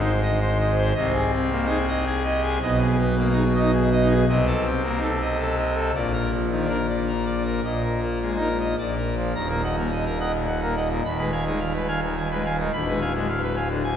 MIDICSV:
0, 0, Header, 1, 2, 480
1, 0, Start_track
1, 0, Tempo, 554017
1, 833, Time_signature, 3, 2, 24, 8
1, 5635, Tempo, 569801
1, 8035, Tempo, 561272
1, 11979, End_track
2, 0, Start_track
2, 0, Title_t, "Pipe organ"
2, 0, Program_c, 0, 19
2, 0, Note_on_c, 0, 32, 79
2, 0, Note_on_c, 0, 44, 80
2, 0, Note_on_c, 0, 63, 61
2, 32, Note_on_c, 0, 72, 67
2, 101, Note_off_c, 0, 63, 0
2, 175, Note_off_c, 0, 72, 0
2, 194, Note_on_c, 0, 75, 71
2, 337, Note_off_c, 0, 75, 0
2, 355, Note_on_c, 0, 72, 67
2, 497, Note_off_c, 0, 72, 0
2, 519, Note_on_c, 0, 75, 72
2, 659, Note_off_c, 0, 75, 0
2, 676, Note_on_c, 0, 72, 71
2, 799, Note_off_c, 0, 32, 0
2, 799, Note_off_c, 0, 44, 0
2, 810, Note_off_c, 0, 72, 0
2, 827, Note_on_c, 0, 75, 99
2, 828, Note_on_c, 0, 36, 80
2, 829, Note_on_c, 0, 48, 81
2, 971, Note_off_c, 0, 75, 0
2, 992, Note_on_c, 0, 68, 72
2, 1134, Note_off_c, 0, 68, 0
2, 1156, Note_on_c, 0, 60, 61
2, 1296, Note_off_c, 0, 60, 0
2, 1310, Note_on_c, 0, 58, 62
2, 1433, Note_on_c, 0, 63, 64
2, 1445, Note_off_c, 0, 58, 0
2, 1469, Note_on_c, 0, 68, 71
2, 1538, Note_off_c, 0, 63, 0
2, 1611, Note_off_c, 0, 68, 0
2, 1629, Note_on_c, 0, 75, 70
2, 1771, Note_off_c, 0, 75, 0
2, 1788, Note_on_c, 0, 68, 67
2, 1930, Note_off_c, 0, 68, 0
2, 1947, Note_on_c, 0, 75, 74
2, 2090, Note_off_c, 0, 75, 0
2, 2106, Note_on_c, 0, 68, 71
2, 2230, Note_off_c, 0, 36, 0
2, 2231, Note_off_c, 0, 48, 0
2, 2243, Note_off_c, 0, 68, 0
2, 2269, Note_on_c, 0, 35, 81
2, 2271, Note_on_c, 0, 47, 81
2, 2273, Note_on_c, 0, 75, 94
2, 2414, Note_off_c, 0, 75, 0
2, 2432, Note_on_c, 0, 68, 75
2, 2573, Note_off_c, 0, 68, 0
2, 2588, Note_on_c, 0, 59, 62
2, 2730, Note_off_c, 0, 59, 0
2, 2749, Note_on_c, 0, 58, 61
2, 2871, Note_on_c, 0, 63, 64
2, 2884, Note_off_c, 0, 58, 0
2, 2913, Note_on_c, 0, 68, 66
2, 2977, Note_off_c, 0, 63, 0
2, 3053, Note_off_c, 0, 68, 0
2, 3074, Note_on_c, 0, 75, 66
2, 3111, Note_on_c, 0, 63, 65
2, 3213, Note_off_c, 0, 75, 0
2, 3216, Note_off_c, 0, 63, 0
2, 3233, Note_on_c, 0, 68, 66
2, 3372, Note_off_c, 0, 68, 0
2, 3395, Note_on_c, 0, 75, 74
2, 3476, Note_on_c, 0, 63, 68
2, 3533, Note_off_c, 0, 75, 0
2, 3556, Note_on_c, 0, 68, 67
2, 3578, Note_off_c, 0, 63, 0
2, 3671, Note_off_c, 0, 35, 0
2, 3672, Note_off_c, 0, 47, 0
2, 3687, Note_off_c, 0, 68, 0
2, 3712, Note_on_c, 0, 75, 93
2, 3714, Note_on_c, 0, 36, 77
2, 3714, Note_on_c, 0, 48, 80
2, 3853, Note_off_c, 0, 75, 0
2, 3873, Note_on_c, 0, 69, 70
2, 4014, Note_off_c, 0, 69, 0
2, 4037, Note_on_c, 0, 60, 63
2, 4176, Note_off_c, 0, 60, 0
2, 4193, Note_on_c, 0, 58, 56
2, 4313, Note_on_c, 0, 63, 56
2, 4327, Note_off_c, 0, 58, 0
2, 4352, Note_on_c, 0, 69, 63
2, 4418, Note_off_c, 0, 63, 0
2, 4493, Note_off_c, 0, 69, 0
2, 4512, Note_on_c, 0, 75, 63
2, 4653, Note_off_c, 0, 75, 0
2, 4675, Note_on_c, 0, 69, 61
2, 4816, Note_off_c, 0, 69, 0
2, 4834, Note_on_c, 0, 75, 67
2, 4976, Note_off_c, 0, 75, 0
2, 4993, Note_on_c, 0, 69, 62
2, 5122, Note_off_c, 0, 36, 0
2, 5122, Note_off_c, 0, 48, 0
2, 5129, Note_off_c, 0, 69, 0
2, 5150, Note_on_c, 0, 46, 73
2, 5151, Note_on_c, 0, 74, 85
2, 5152, Note_on_c, 0, 34, 72
2, 5296, Note_off_c, 0, 74, 0
2, 5312, Note_on_c, 0, 70, 64
2, 5456, Note_off_c, 0, 70, 0
2, 5478, Note_on_c, 0, 53, 54
2, 5620, Note_off_c, 0, 53, 0
2, 5637, Note_on_c, 0, 51, 52
2, 5753, Note_on_c, 0, 62, 53
2, 5770, Note_off_c, 0, 51, 0
2, 5797, Note_on_c, 0, 70, 58
2, 5859, Note_off_c, 0, 62, 0
2, 5936, Note_off_c, 0, 70, 0
2, 5959, Note_on_c, 0, 74, 59
2, 6097, Note_off_c, 0, 74, 0
2, 6120, Note_on_c, 0, 70, 54
2, 6259, Note_off_c, 0, 70, 0
2, 6272, Note_on_c, 0, 74, 57
2, 6415, Note_off_c, 0, 74, 0
2, 6431, Note_on_c, 0, 70, 57
2, 6558, Note_off_c, 0, 46, 0
2, 6559, Note_off_c, 0, 34, 0
2, 6568, Note_off_c, 0, 70, 0
2, 6593, Note_on_c, 0, 34, 61
2, 6593, Note_on_c, 0, 46, 64
2, 6593, Note_on_c, 0, 75, 72
2, 6737, Note_off_c, 0, 75, 0
2, 6754, Note_on_c, 0, 70, 59
2, 6897, Note_off_c, 0, 70, 0
2, 6913, Note_on_c, 0, 58, 47
2, 7056, Note_off_c, 0, 58, 0
2, 7077, Note_on_c, 0, 56, 44
2, 7198, Note_on_c, 0, 63, 47
2, 7212, Note_off_c, 0, 56, 0
2, 7238, Note_on_c, 0, 70, 51
2, 7303, Note_off_c, 0, 63, 0
2, 7379, Note_off_c, 0, 70, 0
2, 7399, Note_on_c, 0, 75, 55
2, 7525, Note_off_c, 0, 46, 0
2, 7526, Note_off_c, 0, 34, 0
2, 7533, Note_off_c, 0, 75, 0
2, 7552, Note_on_c, 0, 74, 69
2, 7554, Note_on_c, 0, 46, 64
2, 7555, Note_on_c, 0, 34, 60
2, 7696, Note_off_c, 0, 74, 0
2, 7719, Note_on_c, 0, 70, 56
2, 7860, Note_off_c, 0, 70, 0
2, 7877, Note_on_c, 0, 53, 51
2, 8011, Note_off_c, 0, 53, 0
2, 8019, Note_off_c, 0, 46, 0
2, 8020, Note_off_c, 0, 34, 0
2, 8031, Note_on_c, 0, 39, 69
2, 8032, Note_on_c, 0, 27, 66
2, 8032, Note_on_c, 0, 82, 77
2, 8140, Note_off_c, 0, 82, 0
2, 8153, Note_on_c, 0, 58, 52
2, 8155, Note_on_c, 0, 70, 56
2, 8260, Note_off_c, 0, 58, 0
2, 8262, Note_off_c, 0, 70, 0
2, 8276, Note_on_c, 0, 75, 48
2, 8276, Note_on_c, 0, 78, 53
2, 8377, Note_off_c, 0, 75, 0
2, 8377, Note_off_c, 0, 78, 0
2, 8397, Note_on_c, 0, 46, 58
2, 8398, Note_on_c, 0, 58, 54
2, 8503, Note_off_c, 0, 46, 0
2, 8504, Note_off_c, 0, 58, 0
2, 8518, Note_on_c, 0, 75, 57
2, 8624, Note_off_c, 0, 75, 0
2, 8638, Note_on_c, 0, 70, 56
2, 8745, Note_off_c, 0, 70, 0
2, 8758, Note_on_c, 0, 75, 51
2, 8760, Note_on_c, 0, 78, 61
2, 8860, Note_off_c, 0, 75, 0
2, 8861, Note_off_c, 0, 78, 0
2, 8879, Note_on_c, 0, 46, 53
2, 8986, Note_off_c, 0, 46, 0
2, 8996, Note_on_c, 0, 78, 60
2, 9104, Note_off_c, 0, 78, 0
2, 9120, Note_on_c, 0, 58, 58
2, 9120, Note_on_c, 0, 70, 60
2, 9227, Note_off_c, 0, 58, 0
2, 9227, Note_off_c, 0, 70, 0
2, 9242, Note_on_c, 0, 75, 52
2, 9244, Note_on_c, 0, 78, 58
2, 9343, Note_off_c, 0, 75, 0
2, 9344, Note_off_c, 0, 78, 0
2, 9366, Note_on_c, 0, 46, 56
2, 9444, Note_off_c, 0, 27, 0
2, 9444, Note_off_c, 0, 39, 0
2, 9465, Note_off_c, 0, 46, 0
2, 9481, Note_on_c, 0, 27, 67
2, 9481, Note_on_c, 0, 39, 66
2, 9482, Note_on_c, 0, 83, 79
2, 9588, Note_off_c, 0, 83, 0
2, 9598, Note_on_c, 0, 71, 55
2, 9599, Note_on_c, 0, 56, 55
2, 9707, Note_off_c, 0, 56, 0
2, 9707, Note_off_c, 0, 71, 0
2, 9720, Note_on_c, 0, 77, 49
2, 9720, Note_on_c, 0, 80, 51
2, 9822, Note_off_c, 0, 80, 0
2, 9823, Note_off_c, 0, 77, 0
2, 9842, Note_on_c, 0, 51, 58
2, 9842, Note_on_c, 0, 56, 56
2, 9949, Note_off_c, 0, 51, 0
2, 9949, Note_off_c, 0, 56, 0
2, 9957, Note_on_c, 0, 77, 62
2, 10066, Note_off_c, 0, 77, 0
2, 10080, Note_on_c, 0, 71, 56
2, 10188, Note_off_c, 0, 71, 0
2, 10197, Note_on_c, 0, 80, 58
2, 10198, Note_on_c, 0, 77, 55
2, 10301, Note_off_c, 0, 80, 0
2, 10302, Note_off_c, 0, 77, 0
2, 10320, Note_on_c, 0, 51, 59
2, 10428, Note_off_c, 0, 51, 0
2, 10445, Note_on_c, 0, 80, 58
2, 10551, Note_off_c, 0, 80, 0
2, 10563, Note_on_c, 0, 71, 56
2, 10564, Note_on_c, 0, 56, 57
2, 10670, Note_off_c, 0, 71, 0
2, 10671, Note_off_c, 0, 56, 0
2, 10684, Note_on_c, 0, 77, 56
2, 10685, Note_on_c, 0, 80, 58
2, 10785, Note_off_c, 0, 77, 0
2, 10786, Note_off_c, 0, 80, 0
2, 10803, Note_on_c, 0, 51, 57
2, 10889, Note_off_c, 0, 27, 0
2, 10889, Note_off_c, 0, 39, 0
2, 10905, Note_off_c, 0, 51, 0
2, 10918, Note_on_c, 0, 26, 70
2, 10918, Note_on_c, 0, 38, 70
2, 10918, Note_on_c, 0, 83, 87
2, 11028, Note_off_c, 0, 83, 0
2, 11040, Note_on_c, 0, 56, 57
2, 11040, Note_on_c, 0, 71, 63
2, 11148, Note_off_c, 0, 71, 0
2, 11149, Note_off_c, 0, 56, 0
2, 11160, Note_on_c, 0, 77, 51
2, 11161, Note_on_c, 0, 80, 58
2, 11263, Note_off_c, 0, 77, 0
2, 11264, Note_off_c, 0, 80, 0
2, 11281, Note_on_c, 0, 50, 59
2, 11281, Note_on_c, 0, 56, 57
2, 11388, Note_off_c, 0, 50, 0
2, 11388, Note_off_c, 0, 56, 0
2, 11400, Note_on_c, 0, 77, 60
2, 11507, Note_off_c, 0, 77, 0
2, 11520, Note_on_c, 0, 71, 59
2, 11626, Note_off_c, 0, 71, 0
2, 11635, Note_on_c, 0, 77, 57
2, 11635, Note_on_c, 0, 80, 64
2, 11737, Note_off_c, 0, 77, 0
2, 11737, Note_off_c, 0, 80, 0
2, 11751, Note_on_c, 0, 50, 59
2, 11860, Note_off_c, 0, 50, 0
2, 11871, Note_on_c, 0, 80, 65
2, 11979, Note_off_c, 0, 26, 0
2, 11979, Note_off_c, 0, 38, 0
2, 11979, Note_off_c, 0, 80, 0
2, 11979, End_track
0, 0, End_of_file